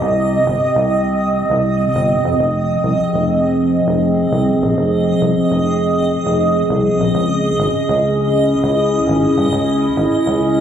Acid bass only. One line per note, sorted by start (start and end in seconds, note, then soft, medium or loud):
0.01 0.38 C2 loud
0.46 0.56 G1 medium
0.76 1.42 C2 medium
1.50 1.87 C2 medium
1.95 2.15 G1 medium
2.24 2.34 F2 medium
2.39 2.76 F1 loud
2.84 2.94 C2 medium
3.13 3.80 F1 medium
3.88 4.25 F1 medium
4.32 4.52 C2 medium
4.62 4.72 A#1 medium
4.77 5.14 F1 loud
5.21 5.31 C2 medium
5.51 6.18 F1 medium
6.25 6.62 F1 medium
6.70 6.90 C2 medium
6.99 7.10 A#1 medium
7.14 7.51 C#2 loud
7.59 7.69 G#1 medium
7.89 8.55 C#2 medium
8.63 9.00 C#2 medium
9.07 9.28 G#1 medium
9.37 9.47 G2 medium
9.52 9.89 C#2 loud
9.97 10.07 G#1 medium
10.26 10.61 C#2 medium